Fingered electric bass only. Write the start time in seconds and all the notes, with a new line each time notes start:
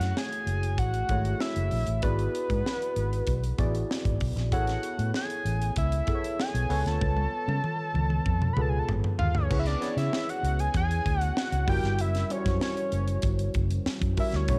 0.00 F#2
0.46 F#1
0.78 A1
1.09 G#1
1.56 F#1
1.72 A#1
1.88 A1
2.03 G#1
2.50 G#2
2.96 G#1
3.27 B1
3.59 A1
4.05 G#1
4.21 B1
4.36 A#1
4.52 A1
4.99 A2
5.45 A1
5.76 C#2
6.54 B1
6.70 C#2
6.85 D2
7.01 C#2
7.48 C#3
7.94 C#2
8.26 F2
8.57 C#2
8.88 G#1
9.19 D#2
9.35 D2
9.50 C#2
9.97 C#3
10.43 C#2
10.75 E2
11.06 D2
11.52 C#2
11.68 F#1
11.83 G1
11.99 F#1
12.46 F#2
12.92 F#1
13.23 G1
13.54 F#1
13.86 muted fingered electric bass stroke
14.01 F#2
14.33 D2
14.48 B1